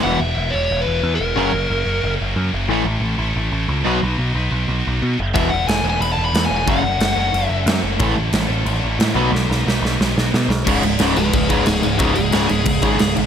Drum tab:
CC |--------|--------|--------|--------|
SD |--------|--------|--------|--------|
BD |--------|--------|--------|--------|

CC |x-x-x-x-|x-x-x-x-|x-x-x-x-|--------|
SD |--o---o-|--o---o-|--o---o-|oooooooo|
BD |o-------|o-------|o-------|--------|

CC |xxxxxxxx|xxxxxxxx|
SD |--o---o-|--o---o-|
BD |o---oo--|o---oo--|